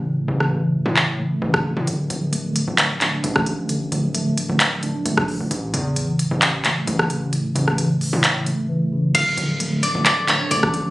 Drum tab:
CC |----------------|----------------|----------------|----------------|
HH |----------------|x-x-x-x-x-x-x-x-|x-x-x-x-x-x-x-o-|x-x-x-x-x-x-x-x-|
CP |--------x-------|--------x-x-----|--------x-------|--------x-x-----|
SD |---r---------r--|-------------r--|-------------r--|-------------r--|
BD |-------------o--|-------------o--|-------------o--|----------------|

CC |----------------|x---------------|
HH |x-x-x-o-x-x-----|x-x-x-x-x-x-x-x-|
CP |--------x-------|--------x-x-----|
SD |---r------------|-------------r--|
BD |----------------|-------------o--|